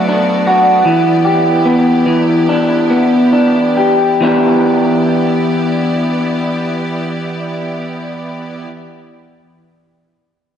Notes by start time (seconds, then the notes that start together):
Already playing: F#3 A3 B3 F#4 A4 D5
0.08 D4
0.47 F#4
0.85 E3 E4 G4
1.25 G4
1.66 B3
2.06 E3
2.49 D4
2.90 B3
3.33 D4
3.77 G4
4.21 E3 B3 D4 E4 G4 D5